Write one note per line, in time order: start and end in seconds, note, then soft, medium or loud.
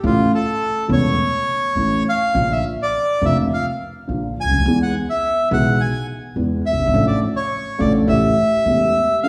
0.03 0.28 A1 medium
0.03 0.28 A2 medium
0.03 0.28 C#3 medium
0.03 0.28 E3 soft
0.03 0.28 A3 soft
0.03 0.28 E4 medium
0.03 0.32 F4 medium
0.35 0.87 A4 medium
0.88 1.14 E1 medium
0.88 1.14 E2 medium
0.88 1.13 C#3 medium
0.88 1.13 E3 soft
0.88 1.14 A3 soft
0.88 1.14 E4 medium
0.93 2.03 C#5 medium
1.75 2.01 A1 soft
1.75 2.01 A2 soft
1.75 2.01 C#3 soft
1.75 2.01 E3 soft
1.75 2.01 A3 soft
1.75 2.01 E4 soft
2.09 2.52 F5 medium
2.34 2.59 A#1 medium
2.34 2.60 A#1 medium
2.34 2.59 A#2 medium
2.34 2.59 D3 soft
2.34 2.59 F3 soft
2.34 2.59 A#3 soft
2.34 2.59 F4 medium
2.52 2.65 E5 medium
2.82 3.25 D5 medium
3.21 3.46 F1 medium
3.21 3.46 F2 medium
3.21 3.46 D3 medium
3.21 3.46 F3 soft
3.21 3.46 A#3 soft
3.21 3.47 F4 medium
3.21 3.38 E5 medium
3.54 3.66 F5 medium
4.07 4.32 A#1 soft
4.07 4.33 A#1 soft
4.07 4.32 A#2 soft
4.07 4.32 D3 soft
4.07 4.32 F3 soft
4.07 4.32 A#3 soft
4.07 4.32 F4 soft
4.41 4.51 C#2 soft
4.41 4.79 G#5 medium
4.46 4.52 C#2 soft
4.51 4.58 D2 soft
4.51 4.60 D2 soft
4.58 4.65 D#2 medium
4.58 4.67 D#2 medium
4.66 4.90 E2 medium
4.66 4.91 E2 medium
4.66 4.90 E3 medium
4.66 4.90 G#3 soft
4.66 4.90 B3 soft
4.66 4.91 G#4 medium
4.83 4.95 F#5 medium
5.10 5.49 E5 medium
5.51 5.75 B1 medium
5.51 5.75 B2 medium
5.51 5.75 E3 medium
5.51 5.75 G#3 medium
5.51 5.75 B3 medium
5.51 5.75 G#4 medium
5.51 5.82 F#5 medium
5.80 6.07 G#5 medium
6.36 6.60 E2 medium
6.36 6.60 E2 soft
6.36 6.61 E3 soft
6.36 6.60 G#3 soft
6.36 6.61 B3 soft
6.36 6.61 G#4 soft
6.66 7.06 E5 medium
6.71 6.79 F#1 soft
6.79 6.86 G1 soft
6.79 6.87 G1 soft
6.86 6.94 G#1 medium
6.93 7.18 A1 medium
6.93 7.18 A2 medium
6.93 7.18 F3 soft
6.93 7.18 A3 soft
6.93 7.18 D4 soft
6.93 7.18 A4 medium
7.07 7.20 D5 medium
7.36 7.81 C#5 medium
7.78 8.03 A1 medium
7.78 8.04 A1 medium
7.78 8.03 A2 medium
7.78 8.03 F3 medium
7.78 8.03 A3 medium
7.78 8.03 D4 soft
7.78 8.03 A4 medium
7.78 7.93 D5 medium
8.07 8.32 A1 medium
8.07 8.32 A2 medium
8.07 8.32 E3 medium
8.07 8.32 A3 medium
8.07 8.32 C#4 medium
8.07 8.32 G4 medium
8.07 9.20 E5 medium
8.65 8.90 E1 soft
8.65 8.91 E2 soft
8.65 8.90 E3 soft
8.65 8.90 A3 soft
8.65 8.90 C#4 soft
8.65 8.91 G4 soft
9.23 9.29 D2 medium
9.23 9.29 D3 medium
9.23 9.29 F3 medium
9.23 9.29 A3 soft
9.23 9.29 D4 soft
9.23 9.29 A4 medium
9.23 9.29 F5 medium